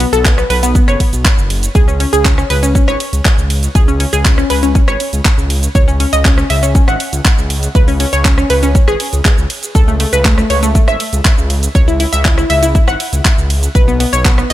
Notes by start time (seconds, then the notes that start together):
0.00 open hi-hat, ride
0.13 B1 A4, closed hi-hat, shaker
0.25 B3, kick, clap, closed hi-hat, shaker
0.38 B3, cross-stick, shaker
0.50 B1 B4, open hi-hat, ride
0.63 B3, closed hi-hat, shaker
0.75 B3, kick, closed hi-hat, shaker
0.88 F#1 C#5, cross-stick, shaker
1.00 kick, open hi-hat, ride
1.13 B1, closed hi-hat, shaker
1.25 kick, clap, closed hi-hat, shaker
1.38 F#1, shaker
1.50 open hi-hat, ride
1.63 closed hi-hat, shaker
1.75 C#2 G#4, kick, closed hi-hat, shaker
1.88 C#4, shaker
2.00 C#4, open hi-hat, ride
2.13 C#2 G#4, closed hi-hat, shaker
2.25 C#4, kick, clap, closed hi-hat, shaker
2.38 C#4, cross-stick, shaker
2.50 C#2 B4, open hi-hat, ride
2.63 C#4, closed hi-hat, shaker
2.75 C#4, kick, closed hi-hat, shaker
2.88 G#1 C#5, cross-stick, shaker
3.00 open hi-hat, ride
3.13 C#2, closed hi-hat, shaker
3.25 kick, clap, closed hi-hat, shaker
3.38 C#2, shaker
3.50 open hi-hat, ride
3.63 closed hi-hat, shaker
3.75 C#2 G#4, kick, closed hi-hat, shaker
3.88 C#4, shaker
4.00 C#4, open hi-hat, ride
4.13 C#2 G#4, closed hi-hat, shaker
4.25 C#4, kick, clap, closed hi-hat, shaker
4.38 C#4, cross-stick, shaker
4.50 C#2 B4, open hi-hat, ride
4.63 C#4, closed hi-hat, shaker
4.75 C#4, kick, closed hi-hat, shaker
4.88 G#1 C#5, cross-stick, shaker
5.00 open hi-hat, ride
5.13 C#2, closed hi-hat, shaker
5.25 kick, clap, closed hi-hat, shaker
5.38 C#2, shaker
5.50 open hi-hat, ride
5.63 closed hi-hat, shaker
5.75 C#2 C#5, kick, closed hi-hat, shaker
5.88 C#4, shaker
6.00 C#4, open hi-hat, ride
6.13 C#2 D#5, closed hi-hat, shaker
6.25 C#4, kick, clap, closed hi-hat, shaker
6.38 C#4, cross-stick, shaker
6.50 C#2 E5, open hi-hat, ride
6.63 C#4, closed hi-hat, shaker
6.75 C#4, kick, closed hi-hat, shaker
6.88 G#1 F#5, cross-stick, shaker
7.00 open hi-hat, ride
7.13 C#2, closed hi-hat, shaker
7.25 kick, clap, closed hi-hat, shaker
7.38 C#2, shaker
7.50 open hi-hat, ride
7.63 closed hi-hat, shaker
7.75 C#2 B4, kick, closed hi-hat, shaker
7.88 C#4, open hi-hat, shaker
8.00 C#4, open hi-hat, ride
8.13 C#2 C#5, closed hi-hat, shaker
8.25 C#4, kick, clap, closed hi-hat, shaker
8.38 C#4, cross-stick, shaker
8.50 C#2 B4, open hi-hat, ride
8.63 C#4, closed hi-hat, shaker
8.75 C#4, kick, closed hi-hat, shaker
8.88 G#1 G#4, cross-stick, shaker
9.00 open hi-hat, ride
9.13 C#2, closed hi-hat, shaker
9.25 kick, clap, closed hi-hat, shaker
9.38 C#2, shaker
9.50 open hi-hat, ride
9.63 closed hi-hat, shaker
9.75 C#2 A4, kick, closed hi-hat, shaker
9.88 A3, shaker
10.00 A3, open hi-hat, ride
10.13 C#2 B4, closed hi-hat, shaker
10.25 A3, kick, clap, closed hi-hat, shaker
10.38 A3, cross-stick, shaker
10.50 C#2 C#5, open hi-hat, ride
10.63 A3, closed hi-hat, shaker
10.75 A3, kick, closed hi-hat, shaker
10.88 G#1 E5, cross-stick, shaker
11.00 open hi-hat, ride
11.13 C#2, closed hi-hat, shaker
11.25 kick, clap, closed hi-hat, shaker
11.38 C#2, shaker
11.50 open hi-hat, ride
11.63 closed hi-hat, shaker
11.75 C#2 C#5, kick, closed hi-hat, shaker
11.88 E4, shaker
12.00 E4, open hi-hat, ride
12.13 C#2 E5, closed hi-hat, shaker
12.25 E4, kick, clap, closed hi-hat, shaker
12.38 E4, cross-stick, shaker
12.50 C#2 E5, open hi-hat, ride
12.63 E4, closed hi-hat, shaker
12.75 E4, kick, closed hi-hat, shaker
12.88 G#1 F#5, cross-stick, shaker
13.00 open hi-hat, ride
13.13 C#2, closed hi-hat, shaker
13.25 kick, clap, closed hi-hat, shaker
13.38 C#2, shaker
13.50 open hi-hat, ride
13.63 closed hi-hat, shaker
13.75 B1 B4, kick, closed hi-hat, shaker
13.88 B3, shaker
14.00 B3, open hi-hat, ride
14.13 B1 C#5, closed hi-hat, shaker
14.25 B3, kick, clap, closed hi-hat, shaker
14.38 B3, cross-stick, shaker
14.50 D#5